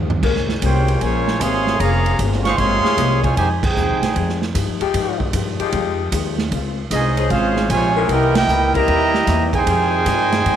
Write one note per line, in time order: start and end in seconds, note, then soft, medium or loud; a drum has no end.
0.00 0.21 D#2 loud
0.00 0.11 F3 medium
0.00 0.11 G#3 medium
0.00 0.12 D#4 medium
0.00 0.12 G4 medium
0.10 floor tom loud
0.23 0.61 C#2 medium
0.23 1.33 G#3 medium
0.23 0.50 A#3 medium
0.23 1.33 A#3 medium
0.23 1.33 C#4 medium
0.23 0.51 C#4 medium
0.23 0.51 G#4 medium
0.23 1.33 A#4 loud
0.23 0.52 C5 medium
0.23 kick medium
0.23 crash loud
0.36 snare soft
0.49 snare medium
0.62 1.00 C2 loud
0.62 0.98 G#3 medium
0.62 0.89 A#3 medium
0.62 0.98 C#4 medium
0.62 0.90 C#4 medium
0.62 0.99 F4 medium
0.62 0.98 G4 medium
0.62 0.90 G#4 medium
0.62 0.99 C5 medium
0.62 0.90 C5 medium
0.62 0.99 C#5 medium
0.62 0.99 G5 medium
0.62 kick soft
0.62 hi-hat pedal medium
0.62 ride medium
0.88 ride medium
1.01 1.39 A#1 loud
1.01 1.40 C#3 medium
1.01 1.38 F3 medium
1.01 1.39 G#3 medium
1.01 1.29 A#3 medium
1.01 1.29 C#4 medium
1.01 1.41 F4 medium
1.01 1.30 G#4 medium
1.01 1.41 C5 medium
1.01 1.30 C5 medium
1.01 1.40 C#5 medium
1.01 1.41 G#5 loud
1.01 kick soft
1.01 ride medium
1.28 snare medium
1.39 1.78 G#1 loud
1.39 1.79 C3 medium
1.39 1.76 F3 medium
1.39 1.79 G#3 medium
1.39 1.68 A#3 medium
1.39 1.68 C#4 medium
1.39 1.79 G#4 medium
1.39 1.69 G#4 medium
1.39 1.79 C#5 medium
1.39 1.79 F5 medium
1.39 1.80 C6 loud
1.39 kick soft
1.39 hi-hat pedal medium
1.39 ride medium
1.44 1.69 C5 medium
1.67 snare soft
1.77 2.18 F1 loud
1.77 2.18 C#3 medium
1.77 2.39 C#3 medium
1.77 2.18 F3 medium
1.77 2.38 A#3 medium
1.77 2.18 A#3 medium
1.77 2.07 A#3 medium
1.77 2.39 C#4 medium
1.77 2.39 G#4 loud
1.77 2.19 G#4 medium
1.77 2.19 C#5 medium
1.77 2.19 F5 medium
1.77 2.19 A#5 loud
1.77 kick soft
1.77 ride medium
1.82 2.08 C#4 medium
1.82 2.08 G#4 medium
1.82 2.09 C5 medium
2.06 ride medium
2.19 2.57 G1 loud
2.19 2.47 A#3 medium
2.19 2.47 C#4 medium
2.19 2.47 G#4 medium
2.19 2.48 C5 medium
2.19 kick soft
2.19 hi-hat pedal medium
2.19 ride medium
2.32 snare soft
2.43 2.55 F3 medium
2.43 2.55 G#3 loud
2.43 2.56 C#4 loud
2.43 2.56 G#4 medium
2.43 2.57 C5 loud
2.43 2.57 F5 medium
2.43 2.57 C#6 loud
2.43 snare medium
2.43 ride medium
2.56 2.82 G#1 loud
2.56 3.22 C3 loud
2.56 3.21 F3 loud
2.56 3.21 G#3 loud
2.56 2.86 A#3 medium
2.56 2.86 C#4 medium
2.56 3.23 G#4 loud
2.56 3.23 C#5 loud
2.56 3.23 F5 loud
2.56 3.23 C6 loud
2.56 kick soft
2.56 ride medium
2.60 2.87 G#4 medium
2.60 2.87 C5 medium
2.82 3.33 C3 medium
2.82 3.34 G#3 medium
2.82 3.34 A#3 medium
2.82 3.33 G#4 loud
2.82 muted upright bass stroke soft
2.82 snare medium
2.97 3.35 C2 loud
2.97 3.25 A#3 medium
2.97 3.25 C#4 medium
2.97 3.25 G#4 medium
2.97 3.26 C5 medium
2.97 kick soft
2.97 hi-hat pedal medium
2.97 ride medium
3.22 3.35 C#3 medium
3.22 3.35 F3 medium
3.22 3.35 G#3 medium
3.22 3.36 F4 medium
3.22 3.36 C5 medium
3.22 3.36 C#5 medium
3.22 3.36 G#5 loud
3.22 kick medium
3.22 ride medium
3.36 3.75 F2 medium
3.36 3.48 C3 medium
3.36 3.47 D#3 medium
3.36 3.64 F3 medium
3.36 3.48 G#3 medium
3.36 3.64 G#3 medium
3.36 3.49 D#4 medium
3.36 3.65 D#4 medium
3.36 3.48 G4 medium
3.36 3.49 C5 medium
3.36 3.49 G#5 loud
3.36 kick soft
3.36 ride medium
3.40 3.66 G4 medium
3.62 4.37 C4 medium
3.62 4.37 D#4 medium
3.62 4.38 D#4 medium
3.62 4.37 G#4 medium
3.62 4.38 C5 medium
3.62 4.37 G5 loud
3.62 kick loud
3.62 crash medium
3.76 3.91 D#2 medium
3.76 4.03 F3 medium
3.76 4.04 G#3 medium
3.76 4.04 D#4 medium
3.76 4.04 G4 medium
3.76 hi-hat pedal medium
3.89 4.01 C2 medium
4.02 4.14 G#1 medium
4.02 snare medium
4.02 ride medium
4.15 4.54 F2 loud
4.15 4.43 F3 medium
4.15 4.43 G#3 medium
4.15 4.44 D#4 medium
4.15 4.44 G4 medium
4.15 kick soft
4.15 ride medium
4.29 snare soft
4.42 snare soft
4.54 4.69 G2 loud
4.54 4.82 F3 medium
4.54 4.82 G#3 medium
4.54 4.83 D#4 medium
4.54 4.83 G4 medium
4.54 kick soft
4.54 hi-hat pedal medium
4.54 ride medium
4.68 4.80 F2 medium
4.81 4.93 D#2 medium
4.81 5.31 F3 loud
4.81 5.30 G#3 loud
4.81 5.31 D#4 loud
4.81 5.31 G4 loud
4.81 ride medium
4.94 5.32 G#2 medium
4.94 5.21 F3 medium
4.94 5.22 G#3 medium
4.94 5.23 D#4 medium
4.94 5.23 G4 medium
4.94 kick soft
4.94 ride medium
5.20 kick medium
5.33 5.57 G2 loud
5.33 5.61 F3 medium
5.33 5.61 G#3 medium
5.33 5.61 D#4 medium
5.33 5.62 G4 medium
5.33 kick soft
5.33 hi-hat pedal medium
5.33 ride loud
5.59 6.10 F3 loud
5.59 6.09 G#3 loud
5.59 6.09 D#4 loud
5.59 6.09 G4 loud
5.59 muted upright bass stroke soft
5.59 ride medium
5.72 6.11 F2 loud
5.72 6.00 F3 medium
5.72 6.00 G#3 medium
5.72 6.01 D#4 medium
5.72 6.01 G4 medium
5.72 kick soft
5.72 ride medium
6.12 6.50 D#2 loud
6.12 6.39 F3 medium
6.12 6.40 G#3 medium
6.12 6.40 D#4 medium
6.12 6.40 G4 medium
6.12 kick soft
6.12 hi-hat pedal medium
6.12 ride loud
6.38 snare medium
6.51 6.89 C#2 medium
6.51 6.79 C#3 medium
6.51 6.79 G#3 medium
6.51 6.80 C4 medium
6.51 6.80 F4 medium
6.51 kick soft
6.51 ride medium
6.90 7.29 C2 medium
6.90 7.18 C#3 medium
6.90 7.27 G#3 medium
6.90 7.18 G#3 medium
6.90 7.18 C4 medium
6.90 7.27 C#4 medium
6.90 7.29 C#4 medium
6.90 7.27 D#4 medium
6.90 7.19 F4 medium
6.90 7.29 G#4 medium
6.90 7.28 C5 medium
6.90 7.29 D#5 loud
6.90 kick soft
6.90 hi-hat pedal medium
6.90 ride medium
7.16 7.66 F3 loud
7.16 7.66 C#4 loud
7.16 7.66 G#4 loud
7.16 7.67 C5 loud
7.16 ride medium
7.29 7.68 G#1 loud
7.29 7.57 C#3 medium
7.29 7.66 G#3 medium
7.29 7.58 G#3 medium
7.29 7.58 C4 medium
7.29 7.67 C#4 medium
7.29 7.68 C#4 medium
7.29 7.66 F4 medium
7.29 7.58 F4 medium
7.29 7.68 G#4 medium
7.29 7.68 C5 loud
7.29 7.68 F5 loud
7.29 kick soft
7.29 ride medium
7.56 snare medium
7.69 8.08 A#1 loud
7.69 8.06 C3 medium
7.69 7.97 C#3 medium
7.69 8.06 F3 medium
7.69 8.06 G#3 medium
7.69 7.97 G#3 medium
7.69 7.97 C4 medium
7.69 7.98 F4 medium
7.69 8.07 F4 medium
7.69 8.07 C5 medium
7.69 8.07 C#5 loud
7.69 8.07 G#5 loud
7.69 kick soft
7.69 hi-hat pedal medium
7.69 ride medium
7.96 8.46 E3 loud
7.96 8.46 C4 loud
7.96 8.46 D#4 loud
7.96 8.46 A#4 loud
8.08 8.47 C2 medium
8.08 8.36 C3 soft
8.08 8.37 E3 medium
8.08 8.34 A#3 loud
8.08 8.37 A#3 medium
8.08 8.38 D#4 medium
8.08 8.34 E4 medium
8.08 8.36 E4 medium
8.08 8.34 G4 medium
8.08 8.36 A#4 loud
8.08 8.36 D#5 loud
8.08 8.36 G5 loud
8.08 kick soft
8.08 ride medium
8.35 8.72 A#3 loud
8.35 8.72 E4 loud
8.35 8.73 E4 loud
8.35 8.72 G4 medium
8.35 8.73 A#4 loud
8.35 8.73 D#5 medium
8.35 8.73 G5 loud
8.35 snare loud
8.35 ride medium
8.48 8.86 C#2 medium
8.48 8.76 C3 medium
8.48 8.76 E3 medium
8.48 8.77 A#3 medium
8.48 8.77 D#4 medium
8.48 hi-hat pedal medium
8.74 9.49 G3 loud
8.74 9.49 A#3 loud
8.74 9.25 C4 loud
8.74 9.49 E4 loud
8.74 9.24 E4 loud
8.74 9.25 G4 loud
8.74 9.50 G4 loud
8.74 9.24 A#4 loud
8.74 9.50 D#5 loud
8.74 9.50 E5 loud
8.74 9.50 A#5 loud
8.74 kick medium
8.74 ride medium
8.88 9.26 D#2 medium
8.88 9.16 C3 medium
8.88 9.16 E3 medium
8.88 9.17 A#3 medium
8.88 kick soft
8.88 ride medium
8.92 9.17 D#4 medium
9.14 snare medium
9.27 9.65 E2 loud
9.27 9.55 C3 medium
9.27 9.55 E3 medium
9.27 9.56 A#3 medium
9.27 9.56 D#4 medium
9.27 kick soft
9.27 snare soft
9.27 hi-hat pedal medium
9.27 ride medium
9.52 10.56 C3 loud
9.52 10.56 D#3 medium
9.52 10.56 D#4 loud
9.52 10.56 G#4 medium
9.52 10.56 C5 loud
9.52 10.56 G5 loud
9.52 10.56 G#5 loud
9.52 kick medium
9.52 ride medium
9.65 10.05 F2 loud
9.65 10.56 F3 medium
9.65 9.94 F3 medium
9.65 9.95 G#3 medium
9.65 10.56 D#4 medium
9.65 10.56 F4 loud
9.65 10.56 G#4 medium
9.65 kick soft
9.65 ride medium
9.69 9.95 D#4 medium
9.69 9.96 G4 medium
10.06 10.44 G2 medium
10.06 10.34 F3 medium
10.06 10.34 G#3 medium
10.06 10.34 D#4 medium
10.06 10.35 G4 medium
10.06 kick soft
10.06 hi-hat pedal medium
10.06 ride medium
10.32 snare medium
10.32 ride medium
10.45 10.56 G#2 medium
10.45 10.56 F3 medium
10.45 10.56 G#3 medium
10.45 10.56 D#4 medium
10.45 10.56 G4 medium
10.45 kick soft
10.45 ride medium